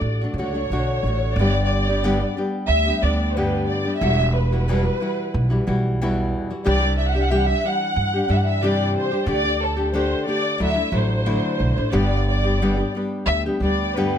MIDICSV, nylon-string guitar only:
0, 0, Header, 1, 2, 480
1, 0, Start_track
1, 0, Key_signature, 1, "major"
1, 0, Tempo, 670391
1, 974, Time_signature, 4, 2, 24, 8
1, 2401, Tempo, 658617
1, 7201, Tempo, 665188
1, 10263, End_track
2, 0, Start_track
2, 0, Title_t, "Nylon-string guitar"
2, 0, Program_c, 0, 24
2, 0, Note_on_c, 0, 57, 47
2, 0, Note_on_c, 0, 62, 53
2, 0, Note_on_c, 0, 66, 54
2, 138, Note_off_c, 0, 66, 0
2, 141, Note_off_c, 0, 57, 0
2, 141, Note_off_c, 0, 62, 0
2, 153, Note_on_c, 0, 66, 53
2, 170, Note_on_c, 0, 57, 46
2, 170, Note_on_c, 0, 62, 43
2, 261, Note_off_c, 0, 66, 0
2, 270, Note_off_c, 0, 57, 0
2, 270, Note_off_c, 0, 62, 0
2, 273, Note_on_c, 0, 50, 55
2, 278, Note_on_c, 0, 57, 59
2, 279, Note_on_c, 0, 62, 60
2, 281, Note_on_c, 0, 66, 70
2, 378, Note_off_c, 0, 62, 0
2, 380, Note_off_c, 0, 50, 0
2, 383, Note_off_c, 0, 57, 0
2, 385, Note_off_c, 0, 66, 0
2, 387, Note_on_c, 0, 62, 36
2, 392, Note_on_c, 0, 66, 45
2, 395, Note_on_c, 0, 57, 44
2, 499, Note_off_c, 0, 62, 0
2, 501, Note_off_c, 0, 66, 0
2, 502, Note_off_c, 0, 57, 0
2, 513, Note_on_c, 0, 50, 72
2, 515, Note_on_c, 0, 57, 73
2, 521, Note_on_c, 0, 62, 78
2, 523, Note_on_c, 0, 66, 82
2, 744, Note_off_c, 0, 50, 0
2, 748, Note_off_c, 0, 57, 0
2, 751, Note_off_c, 0, 62, 0
2, 752, Note_off_c, 0, 66, 0
2, 753, Note_on_c, 0, 50, 49
2, 761, Note_on_c, 0, 57, 56
2, 766, Note_on_c, 0, 62, 61
2, 770, Note_on_c, 0, 66, 61
2, 983, Note_off_c, 0, 50, 0
2, 987, Note_off_c, 0, 57, 0
2, 989, Note_off_c, 0, 62, 0
2, 991, Note_off_c, 0, 66, 0
2, 996, Note_on_c, 0, 43, 72
2, 996, Note_on_c, 0, 50, 71
2, 997, Note_on_c, 0, 59, 69
2, 1006, Note_on_c, 0, 55, 66
2, 1006, Note_on_c, 0, 62, 66
2, 1010, Note_on_c, 0, 67, 76
2, 1344, Note_off_c, 0, 43, 0
2, 1344, Note_off_c, 0, 50, 0
2, 1345, Note_off_c, 0, 59, 0
2, 1348, Note_off_c, 0, 67, 0
2, 1349, Note_off_c, 0, 55, 0
2, 1349, Note_off_c, 0, 62, 0
2, 1356, Note_on_c, 0, 67, 43
2, 1358, Note_on_c, 0, 62, 41
2, 1361, Note_on_c, 0, 59, 47
2, 1363, Note_on_c, 0, 55, 38
2, 1452, Note_off_c, 0, 62, 0
2, 1453, Note_off_c, 0, 55, 0
2, 1457, Note_on_c, 0, 50, 87
2, 1459, Note_off_c, 0, 59, 0
2, 1460, Note_off_c, 0, 67, 0
2, 1461, Note_on_c, 0, 62, 88
2, 1462, Note_on_c, 0, 43, 72
2, 1462, Note_on_c, 0, 55, 76
2, 1468, Note_on_c, 0, 59, 89
2, 1469, Note_on_c, 0, 67, 90
2, 1564, Note_off_c, 0, 67, 0
2, 1573, Note_on_c, 0, 67, 36
2, 1574, Note_off_c, 0, 50, 0
2, 1575, Note_off_c, 0, 62, 0
2, 1576, Note_off_c, 0, 43, 0
2, 1576, Note_off_c, 0, 55, 0
2, 1579, Note_off_c, 0, 59, 0
2, 1585, Note_on_c, 0, 62, 38
2, 1586, Note_on_c, 0, 55, 35
2, 1588, Note_on_c, 0, 59, 31
2, 1686, Note_off_c, 0, 55, 0
2, 1689, Note_off_c, 0, 62, 0
2, 1692, Note_off_c, 0, 67, 0
2, 1695, Note_on_c, 0, 55, 54
2, 1696, Note_off_c, 0, 59, 0
2, 1698, Note_on_c, 0, 62, 57
2, 1705, Note_on_c, 0, 59, 49
2, 1706, Note_on_c, 0, 67, 65
2, 2043, Note_off_c, 0, 67, 0
2, 2045, Note_off_c, 0, 62, 0
2, 2046, Note_off_c, 0, 59, 0
2, 2049, Note_off_c, 0, 55, 0
2, 2051, Note_on_c, 0, 67, 44
2, 2053, Note_on_c, 0, 62, 44
2, 2054, Note_on_c, 0, 59, 41
2, 2070, Note_on_c, 0, 55, 39
2, 2168, Note_off_c, 0, 55, 0
2, 2169, Note_off_c, 0, 67, 0
2, 2170, Note_off_c, 0, 62, 0
2, 2171, Note_off_c, 0, 59, 0
2, 2176, Note_on_c, 0, 55, 47
2, 2178, Note_on_c, 0, 59, 58
2, 2181, Note_on_c, 0, 67, 53
2, 2182, Note_on_c, 0, 62, 61
2, 2401, Note_off_c, 0, 55, 0
2, 2403, Note_off_c, 0, 59, 0
2, 2409, Note_off_c, 0, 67, 0
2, 2410, Note_off_c, 0, 62, 0
2, 2410, Note_on_c, 0, 55, 72
2, 2411, Note_on_c, 0, 50, 77
2, 2412, Note_on_c, 0, 43, 85
2, 2412, Note_on_c, 0, 59, 71
2, 2417, Note_on_c, 0, 62, 80
2, 2420, Note_on_c, 0, 67, 76
2, 2754, Note_off_c, 0, 67, 0
2, 2761, Note_off_c, 0, 62, 0
2, 2763, Note_on_c, 0, 67, 40
2, 2768, Note_off_c, 0, 50, 0
2, 2768, Note_off_c, 0, 55, 0
2, 2768, Note_off_c, 0, 59, 0
2, 2769, Note_off_c, 0, 43, 0
2, 2770, Note_on_c, 0, 62, 42
2, 2777, Note_on_c, 0, 55, 39
2, 2779, Note_on_c, 0, 59, 37
2, 2882, Note_off_c, 0, 67, 0
2, 2884, Note_on_c, 0, 47, 70
2, 2885, Note_off_c, 0, 55, 0
2, 2886, Note_off_c, 0, 62, 0
2, 2886, Note_on_c, 0, 40, 76
2, 2890, Note_off_c, 0, 59, 0
2, 2890, Note_on_c, 0, 64, 69
2, 2892, Note_on_c, 0, 52, 69
2, 2894, Note_on_c, 0, 55, 81
2, 2894, Note_on_c, 0, 66, 88
2, 3005, Note_off_c, 0, 47, 0
2, 3005, Note_off_c, 0, 64, 0
2, 3006, Note_off_c, 0, 40, 0
2, 3008, Note_off_c, 0, 66, 0
2, 3009, Note_off_c, 0, 52, 0
2, 3010, Note_off_c, 0, 55, 0
2, 3014, Note_on_c, 0, 64, 45
2, 3017, Note_on_c, 0, 66, 45
2, 3018, Note_on_c, 0, 55, 34
2, 3025, Note_on_c, 0, 52, 31
2, 3245, Note_off_c, 0, 66, 0
2, 3250, Note_off_c, 0, 64, 0
2, 3252, Note_off_c, 0, 55, 0
2, 3254, Note_on_c, 0, 66, 53
2, 3256, Note_off_c, 0, 52, 0
2, 3259, Note_on_c, 0, 64, 48
2, 3260, Note_on_c, 0, 55, 43
2, 3266, Note_on_c, 0, 52, 48
2, 3366, Note_off_c, 0, 52, 0
2, 3369, Note_off_c, 0, 66, 0
2, 3369, Note_on_c, 0, 40, 82
2, 3371, Note_off_c, 0, 64, 0
2, 3372, Note_off_c, 0, 55, 0
2, 3374, Note_on_c, 0, 52, 89
2, 3376, Note_on_c, 0, 47, 83
2, 3382, Note_on_c, 0, 55, 76
2, 3382, Note_on_c, 0, 64, 83
2, 3383, Note_on_c, 0, 66, 93
2, 3472, Note_off_c, 0, 66, 0
2, 3480, Note_on_c, 0, 66, 44
2, 3481, Note_off_c, 0, 64, 0
2, 3485, Note_off_c, 0, 52, 0
2, 3486, Note_off_c, 0, 55, 0
2, 3488, Note_off_c, 0, 40, 0
2, 3490, Note_on_c, 0, 64, 37
2, 3492, Note_off_c, 0, 47, 0
2, 3494, Note_on_c, 0, 52, 37
2, 3495, Note_on_c, 0, 55, 33
2, 3595, Note_off_c, 0, 52, 0
2, 3598, Note_off_c, 0, 55, 0
2, 3604, Note_on_c, 0, 52, 56
2, 3605, Note_off_c, 0, 66, 0
2, 3607, Note_off_c, 0, 64, 0
2, 3607, Note_on_c, 0, 55, 47
2, 3615, Note_on_c, 0, 64, 67
2, 3620, Note_on_c, 0, 66, 53
2, 3956, Note_off_c, 0, 66, 0
2, 3963, Note_off_c, 0, 64, 0
2, 3965, Note_on_c, 0, 66, 54
2, 3966, Note_off_c, 0, 52, 0
2, 3967, Note_off_c, 0, 55, 0
2, 3972, Note_on_c, 0, 64, 55
2, 3979, Note_on_c, 0, 52, 40
2, 3980, Note_on_c, 0, 55, 51
2, 4079, Note_off_c, 0, 52, 0
2, 4084, Note_off_c, 0, 55, 0
2, 4084, Note_off_c, 0, 64, 0
2, 4088, Note_off_c, 0, 66, 0
2, 4088, Note_on_c, 0, 52, 71
2, 4093, Note_on_c, 0, 55, 71
2, 4093, Note_on_c, 0, 64, 70
2, 4099, Note_on_c, 0, 66, 77
2, 4327, Note_off_c, 0, 52, 0
2, 4330, Note_off_c, 0, 55, 0
2, 4330, Note_off_c, 0, 64, 0
2, 4333, Note_off_c, 0, 66, 0
2, 4340, Note_on_c, 0, 40, 84
2, 4341, Note_on_c, 0, 47, 88
2, 4342, Note_on_c, 0, 52, 91
2, 4345, Note_on_c, 0, 55, 92
2, 4348, Note_on_c, 0, 66, 84
2, 4351, Note_on_c, 0, 64, 90
2, 4687, Note_off_c, 0, 64, 0
2, 4689, Note_off_c, 0, 66, 0
2, 4695, Note_off_c, 0, 40, 0
2, 4696, Note_off_c, 0, 47, 0
2, 4696, Note_off_c, 0, 52, 0
2, 4696, Note_off_c, 0, 55, 0
2, 4696, Note_on_c, 0, 64, 41
2, 4697, Note_on_c, 0, 66, 54
2, 4705, Note_on_c, 0, 55, 37
2, 4707, Note_on_c, 0, 52, 36
2, 4800, Note_off_c, 0, 55, 0
2, 4800, Note_on_c, 0, 48, 76
2, 4802, Note_off_c, 0, 52, 0
2, 4804, Note_off_c, 0, 66, 0
2, 4807, Note_on_c, 0, 67, 87
2, 4809, Note_on_c, 0, 55, 78
2, 4810, Note_off_c, 0, 64, 0
2, 4811, Note_on_c, 0, 52, 76
2, 4813, Note_on_c, 0, 62, 83
2, 4919, Note_off_c, 0, 67, 0
2, 4924, Note_off_c, 0, 48, 0
2, 4927, Note_on_c, 0, 67, 48
2, 4929, Note_off_c, 0, 55, 0
2, 4930, Note_off_c, 0, 52, 0
2, 4931, Note_off_c, 0, 62, 0
2, 4942, Note_on_c, 0, 62, 43
2, 4945, Note_on_c, 0, 55, 45
2, 5158, Note_off_c, 0, 67, 0
2, 5164, Note_off_c, 0, 55, 0
2, 5164, Note_off_c, 0, 62, 0
2, 5167, Note_on_c, 0, 67, 52
2, 5173, Note_on_c, 0, 55, 38
2, 5173, Note_on_c, 0, 62, 54
2, 5275, Note_off_c, 0, 62, 0
2, 5279, Note_off_c, 0, 67, 0
2, 5281, Note_off_c, 0, 55, 0
2, 5282, Note_on_c, 0, 48, 72
2, 5284, Note_on_c, 0, 62, 86
2, 5286, Note_on_c, 0, 52, 83
2, 5288, Note_on_c, 0, 67, 98
2, 5290, Note_on_c, 0, 55, 92
2, 5392, Note_off_c, 0, 67, 0
2, 5404, Note_off_c, 0, 48, 0
2, 5405, Note_off_c, 0, 62, 0
2, 5406, Note_off_c, 0, 52, 0
2, 5408, Note_off_c, 0, 55, 0
2, 5414, Note_on_c, 0, 62, 38
2, 5420, Note_on_c, 0, 55, 34
2, 5520, Note_on_c, 0, 52, 60
2, 5523, Note_off_c, 0, 62, 0
2, 5524, Note_off_c, 0, 55, 0
2, 5531, Note_on_c, 0, 62, 57
2, 5532, Note_on_c, 0, 55, 50
2, 5539, Note_on_c, 0, 67, 53
2, 5878, Note_off_c, 0, 67, 0
2, 5880, Note_off_c, 0, 52, 0
2, 5886, Note_off_c, 0, 62, 0
2, 5887, Note_off_c, 0, 55, 0
2, 5887, Note_on_c, 0, 67, 51
2, 5898, Note_on_c, 0, 55, 45
2, 5901, Note_on_c, 0, 62, 49
2, 5986, Note_off_c, 0, 55, 0
2, 5986, Note_off_c, 0, 62, 0
2, 5992, Note_on_c, 0, 52, 54
2, 5995, Note_off_c, 0, 67, 0
2, 5995, Note_on_c, 0, 55, 64
2, 5995, Note_on_c, 0, 62, 71
2, 6004, Note_on_c, 0, 67, 67
2, 6235, Note_off_c, 0, 55, 0
2, 6236, Note_off_c, 0, 52, 0
2, 6238, Note_off_c, 0, 62, 0
2, 6242, Note_off_c, 0, 67, 0
2, 6243, Note_on_c, 0, 48, 77
2, 6243, Note_on_c, 0, 55, 79
2, 6244, Note_on_c, 0, 52, 77
2, 6250, Note_on_c, 0, 62, 79
2, 6253, Note_on_c, 0, 67, 94
2, 6590, Note_off_c, 0, 67, 0
2, 6593, Note_off_c, 0, 62, 0
2, 6599, Note_off_c, 0, 55, 0
2, 6599, Note_on_c, 0, 67, 50
2, 6602, Note_on_c, 0, 62, 43
2, 6604, Note_off_c, 0, 48, 0
2, 6604, Note_off_c, 0, 52, 0
2, 6608, Note_on_c, 0, 55, 41
2, 6710, Note_off_c, 0, 67, 0
2, 6713, Note_off_c, 0, 62, 0
2, 6715, Note_on_c, 0, 50, 62
2, 6716, Note_off_c, 0, 55, 0
2, 6719, Note_on_c, 0, 57, 66
2, 6719, Note_on_c, 0, 67, 81
2, 6722, Note_on_c, 0, 62, 75
2, 6830, Note_off_c, 0, 62, 0
2, 6836, Note_off_c, 0, 67, 0
2, 6839, Note_off_c, 0, 57, 0
2, 6839, Note_on_c, 0, 62, 36
2, 6840, Note_off_c, 0, 50, 0
2, 6845, Note_on_c, 0, 67, 47
2, 6848, Note_on_c, 0, 57, 33
2, 7066, Note_off_c, 0, 67, 0
2, 7074, Note_off_c, 0, 62, 0
2, 7074, Note_on_c, 0, 67, 54
2, 7083, Note_on_c, 0, 62, 40
2, 7086, Note_off_c, 0, 57, 0
2, 7094, Note_on_c, 0, 57, 48
2, 7188, Note_off_c, 0, 57, 0
2, 7196, Note_off_c, 0, 62, 0
2, 7197, Note_on_c, 0, 57, 81
2, 7198, Note_off_c, 0, 67, 0
2, 7200, Note_on_c, 0, 50, 85
2, 7205, Note_on_c, 0, 62, 91
2, 7211, Note_on_c, 0, 67, 85
2, 7433, Note_off_c, 0, 50, 0
2, 7435, Note_off_c, 0, 57, 0
2, 7437, Note_off_c, 0, 62, 0
2, 7441, Note_on_c, 0, 50, 48
2, 7443, Note_off_c, 0, 67, 0
2, 7444, Note_on_c, 0, 57, 45
2, 7446, Note_on_c, 0, 62, 61
2, 7452, Note_on_c, 0, 67, 56
2, 7669, Note_off_c, 0, 50, 0
2, 7672, Note_off_c, 0, 57, 0
2, 7676, Note_on_c, 0, 54, 69
2, 7677, Note_off_c, 0, 62, 0
2, 7677, Note_on_c, 0, 50, 69
2, 7680, Note_on_c, 0, 57, 70
2, 7681, Note_off_c, 0, 67, 0
2, 7684, Note_on_c, 0, 64, 65
2, 7686, Note_on_c, 0, 62, 77
2, 7775, Note_off_c, 0, 64, 0
2, 7784, Note_on_c, 0, 64, 49
2, 7787, Note_off_c, 0, 57, 0
2, 7787, Note_off_c, 0, 62, 0
2, 7795, Note_on_c, 0, 57, 48
2, 7795, Note_on_c, 0, 62, 48
2, 7800, Note_off_c, 0, 54, 0
2, 7801, Note_off_c, 0, 50, 0
2, 7899, Note_off_c, 0, 62, 0
2, 7903, Note_off_c, 0, 57, 0
2, 7905, Note_on_c, 0, 54, 60
2, 7906, Note_off_c, 0, 64, 0
2, 7908, Note_on_c, 0, 62, 65
2, 7911, Note_on_c, 0, 57, 55
2, 7914, Note_on_c, 0, 64, 69
2, 8146, Note_off_c, 0, 57, 0
2, 8147, Note_off_c, 0, 54, 0
2, 8147, Note_off_c, 0, 64, 0
2, 8150, Note_off_c, 0, 62, 0
2, 8154, Note_on_c, 0, 50, 80
2, 8155, Note_on_c, 0, 54, 74
2, 8155, Note_on_c, 0, 57, 81
2, 8156, Note_on_c, 0, 64, 82
2, 8159, Note_on_c, 0, 62, 81
2, 8511, Note_off_c, 0, 64, 0
2, 8520, Note_on_c, 0, 64, 40
2, 8521, Note_off_c, 0, 62, 0
2, 8522, Note_off_c, 0, 50, 0
2, 8522, Note_off_c, 0, 54, 0
2, 8522, Note_off_c, 0, 57, 0
2, 8530, Note_on_c, 0, 62, 39
2, 8540, Note_on_c, 0, 57, 34
2, 8628, Note_off_c, 0, 62, 0
2, 8628, Note_on_c, 0, 43, 68
2, 8629, Note_off_c, 0, 57, 0
2, 8632, Note_on_c, 0, 50, 73
2, 8632, Note_on_c, 0, 59, 80
2, 8633, Note_off_c, 0, 64, 0
2, 8634, Note_on_c, 0, 55, 71
2, 8636, Note_on_c, 0, 67, 71
2, 8637, Note_on_c, 0, 62, 66
2, 8996, Note_off_c, 0, 43, 0
2, 8998, Note_off_c, 0, 67, 0
2, 8999, Note_off_c, 0, 50, 0
2, 8999, Note_off_c, 0, 59, 0
2, 9000, Note_off_c, 0, 55, 0
2, 9001, Note_off_c, 0, 62, 0
2, 9007, Note_on_c, 0, 67, 47
2, 9009, Note_on_c, 0, 59, 40
2, 9009, Note_on_c, 0, 62, 42
2, 9017, Note_on_c, 0, 55, 40
2, 9124, Note_off_c, 0, 67, 0
2, 9126, Note_off_c, 0, 59, 0
2, 9126, Note_off_c, 0, 62, 0
2, 9128, Note_off_c, 0, 55, 0
2, 9134, Note_on_c, 0, 43, 72
2, 9135, Note_on_c, 0, 50, 71
2, 9137, Note_on_c, 0, 55, 84
2, 9137, Note_on_c, 0, 67, 77
2, 9140, Note_on_c, 0, 62, 88
2, 9142, Note_on_c, 0, 59, 79
2, 9238, Note_off_c, 0, 67, 0
2, 9247, Note_off_c, 0, 62, 0
2, 9247, Note_on_c, 0, 67, 46
2, 9250, Note_off_c, 0, 43, 0
2, 9250, Note_off_c, 0, 50, 0
2, 9251, Note_off_c, 0, 55, 0
2, 9254, Note_off_c, 0, 59, 0
2, 9255, Note_on_c, 0, 62, 39
2, 9260, Note_on_c, 0, 55, 38
2, 9265, Note_on_c, 0, 59, 37
2, 9364, Note_off_c, 0, 55, 0
2, 9367, Note_off_c, 0, 67, 0
2, 9371, Note_off_c, 0, 62, 0
2, 9372, Note_on_c, 0, 55, 52
2, 9374, Note_off_c, 0, 59, 0
2, 9383, Note_on_c, 0, 59, 51
2, 9385, Note_on_c, 0, 62, 63
2, 9386, Note_on_c, 0, 67, 54
2, 9730, Note_off_c, 0, 55, 0
2, 9732, Note_off_c, 0, 67, 0
2, 9735, Note_off_c, 0, 59, 0
2, 9736, Note_off_c, 0, 62, 0
2, 9740, Note_on_c, 0, 67, 50
2, 9747, Note_on_c, 0, 55, 39
2, 9747, Note_on_c, 0, 62, 46
2, 9752, Note_on_c, 0, 59, 42
2, 9850, Note_off_c, 0, 55, 0
2, 9855, Note_off_c, 0, 67, 0
2, 9858, Note_off_c, 0, 62, 0
2, 9858, Note_on_c, 0, 55, 59
2, 9859, Note_off_c, 0, 59, 0
2, 9867, Note_on_c, 0, 67, 65
2, 9868, Note_on_c, 0, 59, 53
2, 9868, Note_on_c, 0, 62, 51
2, 10090, Note_off_c, 0, 55, 0
2, 10095, Note_off_c, 0, 59, 0
2, 10095, Note_off_c, 0, 62, 0
2, 10095, Note_off_c, 0, 67, 0
2, 10107, Note_on_c, 0, 43, 79
2, 10109, Note_on_c, 0, 50, 88
2, 10109, Note_on_c, 0, 62, 85
2, 10112, Note_on_c, 0, 67, 100
2, 10113, Note_on_c, 0, 55, 83
2, 10114, Note_on_c, 0, 59, 75
2, 10263, Note_off_c, 0, 43, 0
2, 10263, Note_off_c, 0, 50, 0
2, 10263, Note_off_c, 0, 55, 0
2, 10263, Note_off_c, 0, 59, 0
2, 10263, Note_off_c, 0, 62, 0
2, 10263, Note_off_c, 0, 67, 0
2, 10263, End_track
0, 0, End_of_file